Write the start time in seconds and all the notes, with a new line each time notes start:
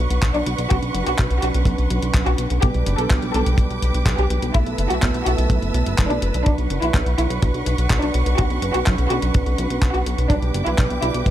Already playing: F#3 D4 B4 C#5 F#5 C#6
0.10 B1, closed hi-hat
0.22 B1, kick, clap, closed hi-hat
0.34 B1 D4, closed hi-hat
0.46 B1, closed hi-hat
0.58 B1, closed hi-hat
0.70 B1 F#3 C#4 D4 F#4, kick, closed hi-hat
0.82 B1, closed hi-hat
0.94 F#1, closed hi-hat
1.06 B1 F#4, closed hi-hat
1.19 B1, kick, clap, closed hi-hat
1.31 B1, closed hi-hat
1.42 B1 F#3 C#4 D4 F#4 B4, closed hi-hat
1.54 B1, closed hi-hat
1.65 B1, kick, closed hi-hat
1.78 B1, closed hi-hat
1.90 B1, closed hi-hat
2.02 B1, closed hi-hat
2.14 B1, kick, clap, closed hi-hat
2.26 B1 F#4, closed hi-hat
2.38 B1, closed hi-hat
2.50 B1, closed hi-hat
2.62 B1 G3 B3 D4 G4 B4 G5 D6, kick, closed hi-hat
2.74 B1, closed hi-hat
2.86 F#1, closed hi-hat
2.98 B1 A4, closed hi-hat
3.10 B1, kick, clap, closed hi-hat
3.22 B1, closed hi-hat
3.34 B1 G3 B3 D4 A4 B4, closed hi-hat
3.46 B1, closed hi-hat
3.58 B1, kick, closed hi-hat
3.70 B1, closed hi-hat
3.82 B1, closed hi-hat
3.94 B1, closed hi-hat
4.06 B1, kick, clap, closed hi-hat
4.18 B1 G4, closed hi-hat
4.30 B1, closed hi-hat
4.42 B1, closed hi-hat
4.54 B1 A3 B3 E4 B4 E5 A5 E6, kick, closed hi-hat
4.66 B1, closed hi-hat
4.78 F#1, closed hi-hat
4.90 B1 F#4, closed hi-hat
5.02 B1, kick, clap, closed hi-hat
5.14 B1, closed hi-hat
5.26 B1 A3 B3 E4 F#4 B4, closed hi-hat
5.38 B1, closed hi-hat
5.50 B1, kick, closed hi-hat
5.62 F#1, closed hi-hat
5.74 B1, closed hi-hat
5.86 F#1, closed hi-hat
5.98 F#1, kick, clap, closed hi-hat
6.10 B1 D4, closed hi-hat
6.22 F#1, closed hi-hat
6.34 B1, closed hi-hat
6.46 B1 F#3 D4 F#5 C#6, kick, closed hi-hat
6.58 B1, closed hi-hat
6.70 F#1, closed hi-hat
6.82 B1 E4, closed hi-hat
6.94 B1, kick, clap, closed hi-hat
7.06 B1, closed hi-hat
7.18 B1 F#3 D4 E4 B4 C#5, closed hi-hat
7.30 B1, closed hi-hat
7.42 B1, kick, closed hi-hat
7.54 B1, closed hi-hat
7.66 B1, closed hi-hat
7.78 B1, closed hi-hat
7.90 B1, kick, clap, closed hi-hat
8.02 B1 D4, closed hi-hat
8.14 B1, closed hi-hat
8.26 B1, closed hi-hat
8.38 B1 F#3 C#4 D4 F#4 B4, kick, closed hi-hat
8.50 B1, closed hi-hat
8.62 F#1, closed hi-hat
8.74 B1 F#4, closed hi-hat
8.86 B1, kick, clap, closed hi-hat
8.98 B1, closed hi-hat
9.10 B1 F#3 C#4 D4 F#4 B4, closed hi-hat
9.22 B1, closed hi-hat
9.34 B1, kick, closed hi-hat
9.46 B1, closed hi-hat
9.58 B1, closed hi-hat
9.70 B1, closed hi-hat
9.82 B1, kick, clap, closed hi-hat
9.94 B1 F#4, closed hi-hat
10.06 B1, closed hi-hat
10.18 B1, closed hi-hat
10.30 B1 G3 B3 D4 B4 G5 D6, kick, closed hi-hat
10.42 B1, closed hi-hat
10.54 F#1, closed hi-hat
10.66 B1 E4, closed hi-hat
10.78 B1, kick, clap, closed hi-hat
10.90 B1, closed hi-hat
11.02 B1 G3 B3 D4 E4 B4, closed hi-hat
11.14 B1, closed hi-hat
11.26 B1, kick, closed hi-hat